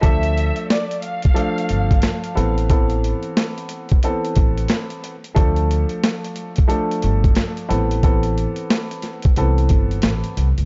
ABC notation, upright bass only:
X:1
M:4/4
L:1/16
Q:"Swing 16ths" 1/4=90
K:Ddor
V:1 name="Upright bass" clef=bass
D,,3 z6 z G,,,2 z2 A,,,2- | A,,,3 z6 z A,,,2 z4 | D,,3 z6 z G,,,2 z2 A,,,2- | A,,,3 z4 z C,,2 G,,,2 A,,, z C,, ^C,, |]